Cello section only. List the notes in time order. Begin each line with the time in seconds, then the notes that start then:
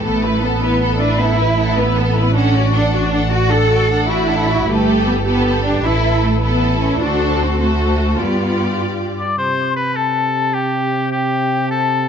0.03 A3
0.42 B3
0.60 B3
0.99 D4
1.19 E4
1.77 B3
2.35 C#4
2.73 D4
2.93 D4
3.32 F#4
3.51 A4
4.09 E4
4.68 A3
5.06 B3
5.25 B3
5.65 D4
5.84 E4
6.23 A3
6.42 B3
6.81 C#4
7.00 D4
7.41 C4
7.61 A3
8.20 B3